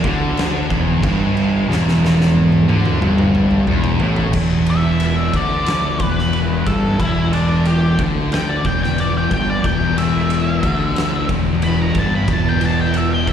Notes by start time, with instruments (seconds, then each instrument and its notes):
0.04 picked electric bass D2, distorted electric guitar D3, kick, crash
0.37 snare, crash
0.70 picked electric bass E1, distorted electric guitar E2, kick, crash
1.02 picked electric bass G1, distorted electric guitar G2, kick, crash
1.37 crash
1.69 picked electric bass E1, distorted electric guitar E2, snare
1.88 snare
2.05 snare
2.21 snare
2.36 high tom
2.52 high tom
2.68 picked electric bass D2, distorted electric guitar D3, high tom
2.85 mid tom
3.01 picked electric bass G1, distorted electric guitar G2, mid tom
3.18 mid tom
3.35 mid tom
3.51 mid tom
3.67 picked electric bass E1, distorted electric guitar E2, mid tom
3.84 floor tom
4.00 picked electric bass A1, distorted electric guitar A2, floor tom
4.16 floor tom
4.32 picked electric bass E1, distorted electric guitar E2, kick, crash
4.66 lead electric guitar E5, ride
5.00 ride
5.33 picked electric bass D2, distorted electric guitar D3, lead electric guitar D5, kick, ride
5.66 snare, ride
6.00 picked electric bass E1, distorted electric guitar E2, lead electric guitar B4, kick, ride
6.19 snare
6.33 ride
6.67 picked electric bass G1, distorted electric guitar G2, lead electric guitar A4, kick, ride
6.99 picked electric bass E1, distorted electric guitar E2, lead electric guitar E4, kick, ride
7.33 lead electric guitar D4, ride
7.65 lead electric guitar G4, ride
7.98 picked electric bass D2, distorted electric guitar D3, kick, ride
8.32 lead electric guitar G5, snare, ride
8.49 lead electric guitar D5
8.64 picked electric bass E1, distorted electric guitar E2, lead electric guitar G5, kick, ride
8.83 lead electric guitar G5, snare
8.98 lead electric guitar D5, ride
9.17 lead electric guitar G5
9.30 picked electric bass G1, distorted electric guitar G2, lead electric guitar G5, kick, ride
9.50 lead electric guitar D5
9.64 picked electric bass E1, distorted electric guitar E2, lead electric guitar G5, kick, ride
9.98 lead electric guitar E5, ride
10.30 ride
10.63 picked electric bass D2, distorted electric guitar D3, kick, ride
10.96 snare, ride
11.28 picked electric bass E1, distorted electric guitar E2, kick, ride
11.62 lead electric guitar B5, ride
11.82 lead electric guitar A#5
11.95 picked electric bass G1, distorted electric guitar G2, kick, ride
11.99 lead electric guitar A5
12.15 lead electric guitar B5
12.28 picked electric bass E1, distorted electric guitar E2, kick, ride
12.33 lead electric guitar A5
12.49 lead electric guitar G5
12.61 ride
12.65 lead electric guitar A5
12.81 lead electric guitar G5
12.94 lead electric guitar E5, ride
13.13 lead electric guitar G5
13.27 picked electric bass D2, distorted electric guitar D3, lead electric guitar E5, kick, ride